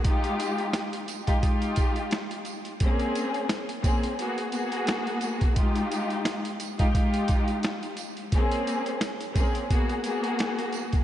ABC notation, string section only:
X:1
M:4/4
L:1/16
Q:"Swing 16ths" 1/4=87
K:Fm
V:1 name="String section"
[A,EFG]6 z [A,EFG] [A,EFG]6 z2 | [B,CDA]4- [B,CDA] z [B,CDA]2 [B,_C_GA]2 [B,CGA]6 | [A,EFG]6 z [A,EFG] [A,EFG]6 z2 | [B,CDA]4- [B,CDA] z [B,CDA]2 [B,_C_GA]2 [B,CGA]6 |]